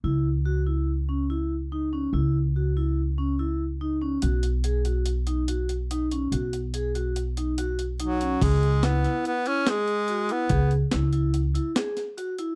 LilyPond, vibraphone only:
\new Staff \with { instrumentName = "Vibraphone" } { \time 5/4 \key cis \minor \tempo 4 = 143 e'4 fis'8 e'4 cis'8 e'4 dis'8 cis'8 | e'4 fis'8 e'4 cis'8 e'4 dis'8 cis'8 | fis'4 gis'8 fis'4 dis'8 fis'4 dis'8 cis'8 | fis'4 gis'8 fis'4 dis'8 fis'4 dis'8 cis'8 |
gis'4 e'8 e'4 e'8 gis'4 fis'8 e'8 | gis'4 e'8 e'4 e'8 gis'4 fis'8 e'8 | }